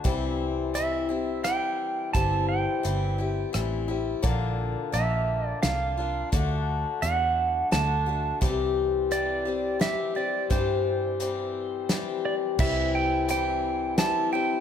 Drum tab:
CC |------|------|------|------|
HH |x-x-x-|x-x-x-|x-x-x-|x-x-x-|
SD |----r-|----r-|----o-|----o-|
BD |o-----|o-----|o-----|o-----|

CC |------|------|x-----|
HH |x-x-x-|x-x-x-|--x-x-|
SD |----o-|----o-|----o-|
BD |o-----|o-----|o-----|